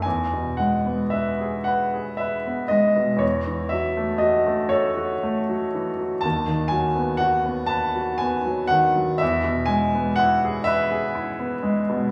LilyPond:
<<
  \new Staff \with { instrumentName = "Grand piano" } { \time 6/8 \key e \major \tempo 4. = 40 gis''8 fis''8 e''8 fis''8 e''8 dis''8 | cis''8 e''8 dis''8 cis''4. | a''8 gis''8 fis''8 a''8 gis''8 fis''8 | e''8 gis''8 fis''8 e''4. | }
  \new Staff \with { instrumentName = "Grand piano" } { \time 6/8 \key e \major e,16 b,16 gis16 b16 b'16 gis'16 b'16 gis'16 b'16 b16 gis16 b,16 | e,16 e16 fis16 a16 fis'16 a16 a'16 fis'16 a16 fis16 e16 fis16 | dis,16 dis16 fis16 b16 fis'16 b16 b'16 fis'16 b16 fis16 dis16 fis16 | e,16 b,16 gis16 b16 e'16 gis'16 b'16 gis'16 e'16 b16 gis16 b,16 | }
>>